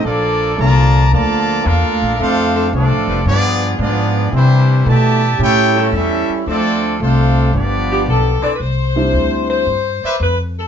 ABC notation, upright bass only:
X:1
M:4/4
L:1/8
Q:"Swing" 1/4=112
K:C
V:1 name="Upright bass" clef=bass
_B,,,2 C,,2 D,,2 (3E,, D,, B,,, | F,,2 (3C,, A,,, F,,, G,,2 _A,,2 | C,2 B,,2 A,,2 E,, z | D,,2 C,,2 G,,,2 B,,, z |
C,,2 D,,2 G,, z F,,2 |]